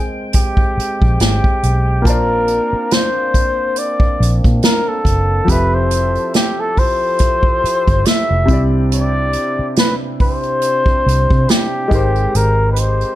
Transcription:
Already playing: upright piano G#3 D#4 A#4 C5 G5, tonewheel organ G#3 C4 G5
0.33 muted trumpet G4, kick, closed hi-hat
0.57 kick
0.77 muted fingered electric bass stroke, closed hi-hat
1.02 fingered electric bass A#1, kick
1.20 fingered electric bass G#1, muted trumpet G4, snare, closed hi-hat
1.44 kick
1.63 fingered electric bass B1, closed hi-hat
2.02 fingered electric bass A#1, upright piano A#3 F4 A5, tonewheel organ A#3 C4 D4, kick
2.06 muted trumpet A#4, upright piano C5 D5, closed hi-hat
2.48 closed hi-hat
2.73 muted fingered electric bass stroke
2.91 muted trumpet C5, snare, closed hi-hat
3.34 kick, closed hi-hat
3.76 muted trumpet D5, closed hi-hat
4.00 kick
4.20 fingered electric bass A#1, closed hi-hat
4.44 fingered electric bass A#2, kick, closed hi-hat
4.63 muted trumpet A#4, snare, closed hi-hat
4.88 muted trumpet A4
5.05 fingered electric bass F#1, kick, closed hi-hat
5.45 upright piano F3 C4 G4, tonewheel organ F3 E4 G4 A4, kick
5.49 fingered electric bass F1, upright piano A4 E5, muted trumpet B4, closed hi-hat
5.74 muted trumpet C5
5.91 closed hi-hat
6.15 closed hi-hat
6.34 muted trumpet G4, snare, closed hi-hat
6.60 muted trumpet A4
6.77 muted trumpet C5, kick, open hi-hat
7.19 kick, closed hi-hat
7.43 kick
7.64 muted fingered electric bass stroke, closed hi-hat
7.88 fingered electric bass G1, kick, closed hi-hat
8.05 muted trumpet E5, snare, closed hi-hat
8.30 fingered electric bass F1
8.45 fingered electric bass C2, upright piano C3 C4 E4, tonewheel organ C3 C4 D4, kick, closed hi-hat
8.51 upright piano G4 D5
8.92 muted trumpet D5, closed hi-hat
9.33 closed hi-hat
9.59 muted fingered electric bass stroke
9.76 muted trumpet B4, snare, closed hi-hat
10.20 muted trumpet C5, kick, open hi-hat
10.43 closed hi-hat
10.62 closed hi-hat
10.86 kick
11.06 fingered electric bass C2, closed hi-hat
11.30 fingered electric bass C3, kick
11.49 muted trumpet G4, snare, closed hi-hat
11.88 fingered electric bass G#1, upright piano G#3 D#4 G4, tonewheel organ G#3 C4 G4, kick
11.92 upright piano A#4 C5, closed hi-hat
12.16 closed hi-hat
12.35 fingered electric bass G#1, muted trumpet A#4, closed hi-hat
12.72 muted trumpet B4, closed hi-hat
12.79 muted trumpet C5
13.01 closed hi-hat

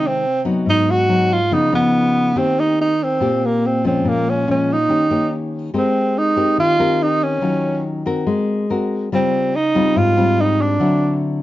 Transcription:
Already playing: nylon-string guitar C3 D#3 G#3 C4
0.07 tenor saxophone C4
0.45 nylon-string guitar F#3 B3 D#4
0.66 nylon-string guitar G#2, tenor saxophone D#4
0.90 tenor saxophone F#4
1.09 nylon-string guitar F#3 B3 D#4
1.33 tenor saxophone F4
1.51 nylon-string guitar C#3 F3 B3 D#4, tenor saxophone D#4
1.72 nylon-string guitar F3 B3 D#4, tenor saxophone B3
2.36 nylon-string guitar D#3 A#3 C4 G4, tenor saxophone C4
2.60 tenor saxophone D#4
2.81 tenor saxophone D#4
3.04 tenor saxophone C4
3.20 nylon-string guitar A#2 A#3 C4 G4
3.45 tenor saxophone A#3
3.66 tenor saxophone C4
3.84 nylon-string guitar F3 G#3 C#4, tenor saxophone C4
4.05 nylon-string guitar A#2, tenor saxophone A#3
4.30 tenor saxophone C#4
4.47 nylon-string guitar F3 G#3 C#4, tenor saxophone C#4
4.73 tenor saxophone D#4
4.89 nylon-string guitar D#3 A#3 C#4 G4
5.10 nylon-string guitar A#3 C#4 G4
5.74 nylon-string guitar G#3 C4 G4 A#4
5.78 tenor saxophone C4
6.18 tenor saxophone D#4
6.36 nylon-string guitar C4 G4 A#4
6.58 nylon-string guitar D#3, tenor saxophone F4
6.79 nylon-string guitar C4 G4 A#4
7.03 tenor saxophone D#4
7.23 tenor saxophone C#4
7.42 nylon-string guitar D#3 F#3 C#4 F4
8.06 nylon-string guitar C4 F#4 A#4
8.27 nylon-string guitar G#3
8.70 nylon-string guitar C4 F#4 A#4
9.12 nylon-string guitar C#3 G3 C4 F4, tenor saxophone C4
9.56 tenor saxophone D#4
9.75 nylon-string guitar G3 C4 F4
9.96 nylon-string guitar G#2, tenor saxophone F4
10.17 nylon-string guitar G3 C4 F4
10.41 tenor saxophone D#4
10.61 tenor saxophone D4
10.80 nylon-string guitar D3 F#3 C4 E4

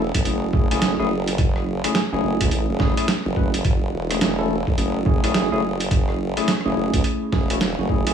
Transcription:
Already playing: wobble bass E1
0.14 wobble bass A1, kick, closed hi-hat
0.25 wobble bass F#1, tine electric piano A3 C#4 E4 G#4, closed hi-hat
0.53 tine electric piano A3 C#4 E4 G#4, kick
0.71 wobble bass F#1, tine electric piano A3 C#4 E4 G#4, closed hi-hat
0.82 wobble bass F#1, snare, closed hi-hat
0.99 wobble bass F#1, tine electric piano A3 C#4 E4 G#4
1.28 closed hi-hat
1.38 wobble bass F#1, kick, closed hi-hat
1.56 cross-stick
1.84 tine electric piano A3 C#4 E4 G#4, cross-stick, closed hi-hat
1.95 snare, closed hi-hat
2.12 wobble bass F#1, tine electric piano A3 C#4 E4 G#4
2.23 wobble bass F#1
2.41 wobble bass C#2, kick, closed hi-hat
2.51 wobble bass A1, closed hi-hat
2.69 wobble bass F#1
2.80 tine electric piano A3 C#4 E4 G#4, kick, snare
2.97 tine electric piano A3 C#4 E4 G#4, closed hi-hat
3.08 snare, closed hi-hat
3.26 wobble bass F#1
3.36 tine electric piano A3 C#4 E4 B4, kick
3.54 closed hi-hat
3.65 wobble bass F#1, kick, closed hi-hat
3.93 wobble bass E1
4.11 tine electric piano A3 C#4 E4 G#4, cross-stick, closed hi-hat
4.21 wobble bass E1, snare, closed hi-hat
4.39 tine electric piano A3 C#4 E4 A4
4.67 wobble bass A1, kick
4.78 wobble bass F#1, tine electric piano A3 C#4 E4 G#4, closed hi-hat
5.06 tine electric piano A3 C#4 E4 G#4, kick
5.24 wobble bass F#1, tine electric piano A3 C#4 E4 G#4, cross-stick, closed hi-hat
5.34 wobble bass F#1, snare, closed hi-hat
5.52 wobble bass F#1, tine electric piano A3 C#4 E4 G#4
5.80 closed hi-hat
5.91 wobble bass F#1, kick, closed hi-hat
6.09 cross-stick
6.37 tine electric piano A3 C#4 E4 G#4, cross-stick, closed hi-hat
6.40 cross-stick
6.42 cross-stick
6.45 cross-stick
6.48 cross-stick, snare, closed hi-hat
6.52 cross-stick
6.57 cross-stick
6.61 cross-stick
6.65 wobble bass F#1, tine electric piano A3 C#4 E4 G#4
6.76 wobble bass F#1
6.93 wobble bass C#2, kick, closed hi-hat
7.04 closed hi-hat
7.32 wobble bass E1, tine electric piano A3 C#4 E4 G#4, kick, snare
7.50 tine electric piano A3 C#4 E4 F#4, closed hi-hat
7.61 snare, closed hi-hat
7.78 wobble bass F#1, tine electric piano A3 C#4 E4 F#4
7.89 tine electric piano A3 C#4 E4 G#4, kick
8.07 tine electric piano A3 C#4 E4 G#4, closed hi-hat

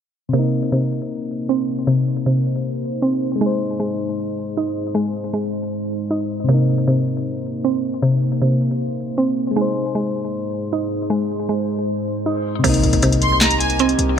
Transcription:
0.29 synth keys C3
0.33 synth pluck C3, ambient pad C3 A#3 D#4 C5, synth keys A#3
0.39 synth keys D#4
0.72 synth pluck C3
1.49 synth pluck C4
1.87 synth pluck C3
2.26 synth pluck C3
3.02 synth pluck C4
3.36 synth keys G#3
3.41 ambient pad G#2 G#3, synth pluck G#3, synth keys D#4
3.46 synth keys C5
3.80 synth pluck G#3
4.57 synth pluck D#4
4.95 synth pluck G#3
5.33 synth pluck G#3
6.11 synth pluck D#4
6.44 synth keys C3
6.49 synth pluck C3, ambient pad C3 A#3, synth keys A#3
6.54 synth keys D#4
6.87 synth pluck C3
7.64 synth pluck C4
8.02 synth pluck C3
8.41 synth pluck C3
9.18 synth pluck C4
9.51 synth keys G#3
9.56 ambient pad G#2 G#3 D#4 C5, synth pluck G#3, synth keys D#4
9.61 synth keys C5
9.95 synth pluck G#3
10.73 synth pluck D#4
11.10 synth pluck G#3
11.49 synth pluck G#3
12.26 synth pluck D#4
12.59 synth keys C3
12.64 808-style bass C2, synth pluck C3, synth keys A#3, ambient pad C4 G4 A#4 D#5, closed hi-hat, crash, impact
12.69 synth keys D#4
12.74 closed hi-hat
12.83 808-style bass C2, closed hi-hat
12.93 808-style bass C2, closed hi-hat
13.02 synth pluck C3, closed hi-hat
13.12 closed hi-hat
13.22 violin section C6, closed hi-hat
13.41 violin section A#5, snare, clap, closed hi-hat
13.51 closed hi-hat
13.60 violin section G#5, closed hi-hat
13.70 closed hi-hat
13.79 synth pluck C4, closed hi-hat
13.89 closed hi-hat
13.99 808-style bass C2, closed hi-hat

